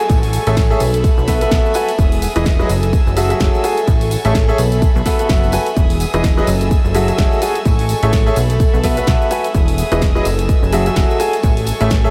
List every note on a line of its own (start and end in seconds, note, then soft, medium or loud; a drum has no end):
0.00 1.95 A4 medium
0.00 0.79 G#5 medium
0.00 downlifter medium
0.00 shaker soft
0.10 0.38 A1 loud
0.10 0.80 C#6 medium
0.10 kick loud
0.10 closed hi-hat medium
0.10 tambourine medium
0.10 shaker soft
0.23 open hi-hat medium
0.23 tambourine soft
0.23 shaker soft
0.33 open hi-hat loud
0.33 tambourine loud
0.33 shaker medium
0.47 0.74 A1 loud
0.47 0.57 A3 loud
0.47 0.57 G#4 medium
0.47 0.57 A4 medium
0.47 0.57 C#5 medium
0.47 0.57 E5 loud
0.47 closed hi-hat medium
0.47 tambourine soft
0.47 shaker soft
0.57 kick loud
0.57 snare loud
0.57 closed hi-hat medium
0.57 tambourine medium
0.57 shaker soft
0.70 0.79 G#4 medium
0.70 0.79 A4 medium
0.70 0.79 C#5 medium
0.70 0.79 E5 loud
0.70 tambourine soft
0.70 shaker soft
0.80 1.09 B1 medium
0.80 2.67 E5 medium
0.80 1.97 B5 medium
0.80 open hi-hat loud
0.80 tambourine loud
0.80 shaker medium
0.94 closed hi-hat medium
0.94 tambourine soft
0.94 shaker soft
1.04 kick loud
1.04 closed hi-hat medium
1.04 tambourine medium
1.04 shaker soft
1.17 1.45 B1 medium
1.17 tambourine soft
1.17 shaker soft
1.28 1.39 B3 medium
1.28 1.39 F#4 medium
1.28 1.39 A4 medium
1.28 1.39 B4 medium
1.28 1.39 E5 loud
1.28 kick medium
1.28 snare medium
1.28 open hi-hat loud
1.28 tambourine loud
1.28 shaker medium
1.41 1.50 B3 medium
1.41 1.50 F#4 medium
1.41 1.50 A4 medium
1.41 1.50 B4 medium
1.41 1.50 E5 medium
1.41 closed hi-hat medium
1.41 tambourine soft
1.41 shaker soft
1.51 1.60 B1 medium
1.51 1.71 F#4 medium
1.51 kick loud
1.51 snare loud
1.51 closed hi-hat medium
1.51 tambourine medium
1.51 shaker soft
1.64 tambourine soft
1.64 shaker soft
1.74 1.89 F#4 medium
1.74 1.89 A4 medium
1.74 1.89 B4 medium
1.74 1.89 G#5 medium
1.74 open hi-hat loud
1.74 tambourine loud
1.74 shaker medium
1.89 closed hi-hat medium
1.89 tambourine soft
1.89 shaker soft
1.98 2.27 E1 loud
1.98 2.69 G#4 medium
1.98 2.69 D#6 medium
1.98 kick loud
1.98 closed hi-hat medium
1.98 tambourine medium
1.98 shaker soft
2.12 open hi-hat medium
2.12 tambourine soft
2.12 shaker soft
2.22 open hi-hat loud
2.22 tambourine medium
2.22 shaker medium
2.36 2.63 E1 loud
2.36 2.46 E3 loud
2.36 2.46 E4 medium
2.36 2.46 G#4 medium
2.36 2.46 B4 medium
2.36 2.46 D#5 loud
2.36 closed hi-hat medium
2.36 tambourine soft
2.36 shaker soft
2.46 kick loud
2.46 snare loud
2.46 closed hi-hat medium
2.46 tambourine medium
2.46 shaker soft
2.59 2.68 F#3 loud
2.59 2.68 E4 medium
2.59 2.68 G#4 medium
2.59 2.68 B4 medium
2.59 2.68 D#5 loud
2.59 tambourine soft
2.59 shaker soft
2.69 2.98 F#1 medium
2.69 5.73 A4 medium
2.69 4.56 G#5 medium
2.69 3.86 E6 medium
2.69 open hi-hat loud
2.69 tambourine loud
2.69 shaker medium
2.83 closed hi-hat medium
2.83 tambourine soft
2.83 shaker soft
2.93 kick loud
2.93 closed hi-hat medium
2.93 tambourine medium
2.93 shaker soft
3.07 3.34 F#1 medium
3.07 tambourine soft
3.07 shaker soft
3.17 3.28 F#3 medium
3.17 3.28 F#4 medium
3.17 3.28 G#4 medium
3.17 3.28 A4 medium
3.17 3.28 E5 loud
3.17 open hi-hat loud
3.17 tambourine medium
3.17 shaker medium
3.30 3.39 F#3 medium
3.30 3.39 F#4 medium
3.30 3.39 G#4 medium
3.30 3.39 A4 medium
3.30 3.39 E5 medium
3.30 closed hi-hat medium
3.30 tambourine soft
3.30 shaker soft
3.40 3.49 F#1 medium
3.40 3.60 F#3 medium
3.40 3.60 F#4 medium
3.40 3.60 G#4 medium
3.40 3.60 A4 medium
3.40 3.60 E5 medium
3.40 kick loud
3.40 snare loud
3.40 closed hi-hat medium
3.40 tambourine medium
3.40 shaker soft
3.54 tambourine soft
3.54 shaker soft
3.64 3.78 F#4 medium
3.64 3.78 G#4 medium
3.64 3.78 A4 medium
3.64 3.78 G#5 loud
3.64 open hi-hat loud
3.64 tambourine medium
3.64 shaker medium
3.77 closed hi-hat medium
3.77 tambourine soft
3.77 shaker soft
3.88 4.16 A1 loud
3.88 4.58 C#6 medium
3.88 kick loud
3.88 closed hi-hat medium
3.88 tambourine medium
3.88 shaker soft
4.01 open hi-hat medium
4.01 tambourine soft
4.01 shaker soft
4.11 open hi-hat loud
4.11 tambourine loud
4.11 shaker medium
4.25 4.52 A1 loud
4.25 4.35 A3 loud
4.25 4.35 G#4 medium
4.25 4.35 A4 medium
4.25 4.35 C#5 medium
4.25 4.35 E5 loud
4.25 closed hi-hat medium
4.25 tambourine soft
4.25 shaker soft
4.35 kick loud
4.35 snare loud
4.35 closed hi-hat medium
4.35 tambourine medium
4.35 shaker soft
4.48 4.57 G#4 loud
4.48 4.57 A4 medium
4.48 4.57 C#5 medium
4.48 4.57 E5 loud
4.48 tambourine soft
4.48 shaker soft
4.58 4.87 B1 medium
4.58 6.46 E5 medium
4.58 5.75 B5 medium
4.58 open hi-hat loud
4.58 tambourine loud
4.58 shaker medium
4.72 closed hi-hat medium
4.72 tambourine soft
4.72 shaker soft
4.82 kick loud
4.82 closed hi-hat medium
4.82 tambourine medium
4.82 shaker soft
4.95 5.02 B1 loud
4.95 tambourine soft
4.95 shaker soft
5.06 5.17 B3 medium
5.06 5.17 F#4 medium
5.06 5.17 A4 medium
5.06 5.17 B4 medium
5.06 5.17 E5 loud
5.06 kick medium
5.06 snare medium
5.06 open hi-hat loud
5.06 tambourine medium
5.06 shaker medium
5.19 5.28 B3 medium
5.19 5.28 F#4 medium
5.19 5.28 A4 medium
5.19 5.28 B4 medium
5.19 5.28 E5 medium
5.19 closed hi-hat medium
5.19 tambourine soft
5.19 shaker soft
5.29 5.58 F#1 loud
5.29 5.49 B3 medium
5.29 5.49 F#4 medium
5.29 5.49 A4 medium
5.29 5.49 B4 medium
5.29 5.49 E5 medium
5.29 kick loud
5.29 snare loud
5.29 closed hi-hat medium
5.29 tambourine medium
5.29 shaker soft
5.43 tambourine soft
5.43 shaker soft
5.52 5.67 F#4 medium
5.52 5.67 A4 medium
5.52 5.67 B4 medium
5.52 5.67 G#5 loud
5.52 open hi-hat loud
5.52 tambourine loud
5.52 shaker medium
5.66 closed hi-hat medium
5.66 tambourine soft
5.66 shaker soft
5.76 6.05 E1 loud
5.76 6.47 G#4 medium
5.76 6.47 D#6 medium
5.76 kick loud
5.76 closed hi-hat medium
5.76 tambourine medium
5.76 shaker soft
5.90 open hi-hat medium
5.90 tambourine soft
5.90 shaker soft
6.00 open hi-hat loud
6.00 tambourine loud
6.00 shaker medium
6.14 6.41 E1 loud
6.14 6.24 E3 loud
6.14 6.24 E4 medium
6.14 6.24 G#4 medium
6.14 6.24 B4 medium
6.14 6.24 D#5 loud
6.14 closed hi-hat medium
6.14 tambourine soft
6.14 shaker soft
6.24 kick loud
6.24 snare loud
6.24 closed hi-hat medium
6.24 tambourine medium
6.24 shaker soft
6.37 6.46 F#3 medium
6.37 6.46 E4 medium
6.37 6.46 G#4 medium
6.37 6.46 B4 medium
6.37 6.46 D#5 loud
6.37 tambourine soft
6.37 shaker soft
6.47 6.76 F#1 medium
6.47 9.51 A4 medium
6.47 8.35 G#5 medium
6.47 7.64 E6 medium
6.47 open hi-hat loud
6.47 tambourine medium
6.47 shaker medium
6.61 closed hi-hat medium
6.61 tambourine soft
6.61 shaker soft
6.71 kick loud
6.71 closed hi-hat medium
6.71 tambourine medium
6.71 shaker soft
6.85 7.12 F#1 medium
6.85 tambourine soft
6.85 shaker soft
6.95 7.06 F#3 medium
6.95 7.06 F#4 medium
6.95 7.06 G#4 medium
6.95 7.06 A4 medium
6.95 7.06 E5 loud
6.95 open hi-hat loud
6.95 tambourine medium
6.95 shaker medium
7.08 7.17 F#3 medium
7.08 7.17 F#4 medium
7.08 7.17 G#4 medium
7.08 7.17 A4 medium
7.08 7.17 E5 medium
7.08 closed hi-hat medium
7.08 tambourine soft
7.08 shaker soft
7.18 7.27 F#1 medium
7.18 7.38 F#3 medium
7.18 7.38 F#4 medium
7.18 7.38 G#4 medium
7.18 7.38 A4 medium
7.18 7.38 E5 medium
7.18 kick loud
7.18 snare loud
7.18 closed hi-hat medium
7.18 tambourine medium
7.18 shaker soft
7.31 tambourine soft
7.31 shaker soft
7.42 7.56 F#4 medium
7.42 7.56 G#4 medium
7.42 7.56 A4 medium
7.42 7.56 G#5 medium
7.42 open hi-hat loud
7.42 tambourine loud
7.42 shaker medium
7.55 closed hi-hat medium
7.55 tambourine soft
7.55 shaker soft
7.65 7.94 A1 loud
7.65 8.36 C#6 medium
7.65 kick loud
7.65 closed hi-hat medium
7.65 tambourine medium
7.65 shaker soft
7.79 open hi-hat medium
7.79 tambourine soft
7.79 shaker soft
7.89 open hi-hat loud
7.89 tambourine medium
7.89 shaker medium
8.03 8.30 A1 loud
8.03 8.13 A3 loud
8.03 8.13 G#4 medium
8.03 8.13 A4 medium
8.03 8.13 C#5 medium
8.03 8.13 E5 loud
8.03 closed hi-hat medium
8.03 tambourine soft
8.03 shaker soft
8.13 kick loud
8.13 snare loud
8.13 closed hi-hat medium
8.13 tambourine soft
8.13 shaker soft
8.26 8.35 G#4 loud
8.26 8.35 A4 medium
8.26 8.35 C#5 medium
8.26 8.35 E5 loud
8.26 tambourine soft
8.26 shaker soft
8.36 8.65 B1 medium
8.36 10.23 E5 medium
8.36 9.53 B5 medium
8.36 open hi-hat loud
8.36 tambourine medium
8.36 shaker medium
8.50 closed hi-hat medium
8.50 tambourine soft
8.50 shaker soft
8.60 kick loud
8.60 closed hi-hat medium
8.60 tambourine soft
8.60 shaker soft
8.74 9.01 B1 medium
8.74 tambourine soft
8.74 shaker soft
8.83 8.95 B3 medium
8.83 8.95 F#4 medium
8.83 8.95 A4 medium
8.83 8.95 B4 medium
8.83 8.95 E5 loud
8.83 kick medium
8.83 snare medium
8.83 open hi-hat loud
8.83 tambourine loud
8.83 shaker medium
8.97 9.06 B3 medium
8.97 9.06 F#4 medium
8.97 9.06 A4 medium
8.97 9.06 B4 medium
8.97 9.06 E5 medium
8.97 closed hi-hat medium
8.97 tambourine soft
8.97 shaker soft
9.07 9.15 B1 medium
9.07 9.27 B3 medium
9.07 9.27 F#4 medium
9.07 9.27 A4 medium
9.07 9.27 B4 medium
9.07 9.27 E5 medium
9.07 kick loud
9.07 snare loud
9.07 closed hi-hat medium
9.07 tambourine medium
9.07 shaker soft
9.22 tambourine soft
9.22 shaker soft
9.31 9.45 F#4 medium
9.31 9.45 A4 medium
9.31 9.45 B4 medium
9.31 9.45 G#5 loud
9.31 open hi-hat loud
9.31 tambourine medium
9.31 shaker medium
9.44 closed hi-hat medium
9.44 tambourine soft
9.44 shaker soft
9.54 9.83 E1 loud
9.54 10.25 G#4 medium
9.54 10.25 D#6 medium
9.54 kick loud
9.54 closed hi-hat medium
9.54 tambourine soft
9.54 shaker soft
9.68 open hi-hat medium
9.68 tambourine soft
9.68 shaker soft
9.78 open hi-hat loud
9.78 tambourine medium
9.78 shaker medium
9.92 10.19 E1 loud
9.92 10.02 E3 loud
9.92 10.02 E4 medium
9.92 10.02 G#4 medium
9.92 10.02 B4 medium
9.92 10.02 D#5 loud
9.92 closed hi-hat medium
9.92 tambourine soft
9.92 shaker soft
10.01 kick loud
10.01 snare loud
10.01 closed hi-hat medium
10.01 tambourine medium
10.01 shaker soft
10.15 10.24 F#3 loud
10.15 10.24 E4 medium
10.15 10.24 G#4 medium
10.15 10.24 B4 medium
10.15 10.24 D#5 loud
10.15 tambourine soft
10.15 shaker soft
10.25 10.54 F#1 medium
10.25 12.10 A4 medium
10.25 12.10 G#5 medium
10.25 11.42 E6 medium
10.25 open hi-hat loud
10.25 tambourine medium
10.25 shaker medium
10.39 closed hi-hat medium
10.39 tambourine soft
10.39 shaker soft
10.49 kick loud
10.49 closed hi-hat medium
10.49 tambourine soft
10.49 shaker soft
10.62 10.90 F#1 medium
10.62 tambourine soft
10.62 shaker soft
10.72 10.84 F#3 medium
10.72 10.84 F#4 medium
10.72 10.84 G#4 medium
10.72 10.84 A4 medium
10.72 10.84 E5 loud
10.72 open hi-hat loud
10.72 tambourine loud
10.72 shaker medium
10.86 10.95 F#3 medium
10.86 10.95 F#4 medium
10.86 10.95 G#4 medium
10.86 10.95 A4 medium
10.86 10.95 E5 medium
10.86 closed hi-hat medium
10.86 tambourine soft
10.86 shaker soft
10.96 11.04 F#1 medium
10.96 11.16 F#3 medium
10.96 11.16 F#4 medium
10.96 11.16 G#4 medium
10.96 11.16 A4 medium
10.96 11.16 E5 medium
10.96 kick loud
10.96 snare loud
10.96 closed hi-hat medium
10.96 tambourine soft
10.96 shaker soft
11.10 tambourine soft
11.10 shaker soft
11.20 11.34 F#4 medium
11.20 11.34 G#4 medium
11.20 11.34 A4 medium
11.20 11.34 G#5 loud
11.20 open hi-hat loud
11.20 tambourine medium
11.20 shaker medium
11.33 closed hi-hat medium
11.33 tambourine soft
11.33 shaker soft
11.43 11.72 A1 loud
11.43 12.10 C#6 medium
11.43 kick loud
11.43 closed hi-hat medium
11.43 tambourine soft
11.43 shaker soft
11.57 open hi-hat medium
11.57 tambourine soft
11.57 shaker soft
11.66 open hi-hat loud
11.66 tambourine loud
11.66 shaker medium
11.81 12.08 A1 loud
11.81 11.91 A3 loud
11.81 11.91 G#4 medium
11.81 11.91 A4 medium
11.81 11.91 C#5 medium
11.81 11.91 E5 loud
11.81 closed hi-hat medium
11.81 tambourine soft
11.81 shaker soft
11.90 kick loud
11.90 snare loud
11.90 closed hi-hat medium
11.90 tambourine soft
11.90 shaker soft
12.04 12.10 G#4 medium
12.04 12.10 A4 medium
12.04 12.10 C#5 medium
12.04 12.10 E5 loud
12.04 tambourine soft
12.04 shaker soft